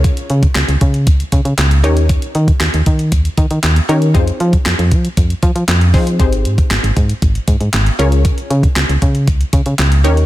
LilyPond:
<<
  \new Staff \with { instrumentName = "Synth pluck" } { \time 4/4 \key des \lydian \tempo 4 = 117 <des' f' aes' bes' des''>4 r2 r8 <des' ees' g' bes' des''>8~ | <des' ees' g' bes' des''>4 r2 r8 <des' ees' g' bes' des''>8 | <c' ees' f' aes' c''>4. r2 <c' ees' f' aes' c''>8 | <c' ees' g' aes' c''>4. r2 <des' f' aes' bes' des''>8~ |
<des' f' aes' bes' des''>4 r2 r8 <des' ees' g' bes' des''>8 | }
  \new Staff \with { instrumentName = "FM bass" } { \clef bass \time 4/4 \key des \lydian des,8 des8 des,16 des,16 des8 des,8 des16 des16 des,8 ees,8~ | ees,8 ees8 ees,16 ees,16 ees8 ees,8 ees16 ees16 ees,8 ees8 | f,8 f8 f,16 f,16 f8 f,8 f16 f16 f,8 f8 | aes,,8 aes,8 aes,,16 aes,,16 aes,8 aes,,8 aes,16 aes,16 aes,,8 des,8~ |
des,8 des8 des,16 des,16 des8 des,8 des16 des16 des,8 ees,8 | }
  \new DrumStaff \with { instrumentName = "Drums" } \drummode { \time 4/4 <hh bd>16 hh16 hh16 <hh bd>16 <hc hh sn>16 hh16 <hh bd>16 hh16 <hh bd>16 hh16 <hh bd>16 hh16 <hc hh sn>16 hh16 hh16 hh16 | <hh bd>16 hh16 hh16 <hh bd>16 <hc hh sn>16 hh16 <hh bd>16 hh16 <hh bd>16 hh16 <hh bd>16 hh16 <hc hh sn>16 hh16 hh16 hh16 | <hh bd>16 hh16 hh16 <hh bd>16 <hc hh sn>16 hh16 <hh bd>16 hh16 <hh bd>16 hh16 <hh bd>16 hh16 <hc hh sn>16 hh16 <hho bd>16 hh16 | <hh bd>16 hh16 hh16 <hh bd>16 <hc hh sn>16 hh16 <hh bd>16 hh16 <hh bd>16 hh16 <hh bd>16 hh16 <hc hh sn>16 hh16 hh16 hh16 |
<hh bd>16 hh16 hh16 <hh bd>16 <hc hh sn>16 hh16 <hh bd>16 hh16 <hh bd>16 hh16 <hh bd>16 hh16 <hc hh sn>16 hh16 hh16 hh16 | }
>>